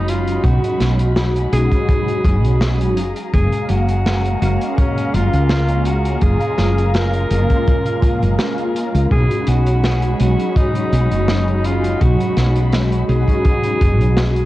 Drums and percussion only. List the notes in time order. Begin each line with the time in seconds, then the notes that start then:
0.08 closed hi-hat
0.27 closed hi-hat
0.44 kick, closed hi-hat
0.64 closed hi-hat
0.80 snare, closed hi-hat
0.99 closed hi-hat
1.16 snare, closed hi-hat
1.36 closed hi-hat
1.53 closed hi-hat
1.72 kick, closed hi-hat
1.89 kick, closed hi-hat
2.08 closed hi-hat
2.25 kick, closed hi-hat
2.45 closed hi-hat
2.61 snare, closed hi-hat
2.81 closed hi-hat
2.97 closed hi-hat
3.16 closed hi-hat
3.33 kick, closed hi-hat
3.52 closed hi-hat
3.69 closed hi-hat
3.88 closed hi-hat
4.06 snare, closed hi-hat
4.25 closed hi-hat
4.42 closed hi-hat
4.61 closed hi-hat
4.78 kick, closed hi-hat
4.97 closed hi-hat
5.14 closed hi-hat
5.33 closed hi-hat
5.50 snare, closed hi-hat
5.69 closed hi-hat
5.85 closed hi-hat
6.05 closed hi-hat
6.21 kick, closed hi-hat
6.41 closed hi-hat
6.58 snare, closed hi-hat
6.78 closed hi-hat
6.94 snare, closed hi-hat
7.14 closed hi-hat
7.31 closed hi-hat
7.50 kick, closed hi-hat
7.67 kick, closed hi-hat
7.86 closed hi-hat
8.02 kick, closed hi-hat
8.22 closed hi-hat
8.39 snare, closed hi-hat
8.58 closed hi-hat
8.76 closed hi-hat
8.95 closed hi-hat
9.11 kick, closed hi-hat
9.31 closed hi-hat
9.47 closed hi-hat
9.67 closed hi-hat
9.84 snare, closed hi-hat
10.02 closed hi-hat
10.20 closed hi-hat
10.39 closed hi-hat
10.56 kick, closed hi-hat
10.75 closed hi-hat
10.93 closed hi-hat
11.11 closed hi-hat
11.28 snare, closed hi-hat
11.48 closed hi-hat
11.64 closed hi-hat
11.84 closed hi-hat
12.01 kick, closed hi-hat
12.20 closed hi-hat
12.37 snare, closed hi-hat
12.56 closed hi-hat
12.72 snare, closed hi-hat
12.92 closed hi-hat
13.09 closed hi-hat
13.28 kick, closed hi-hat
13.45 kick, closed hi-hat
13.64 closed hi-hat
13.81 kick, closed hi-hat
14.01 closed hi-hat
14.17 snare, closed hi-hat
14.36 closed hi-hat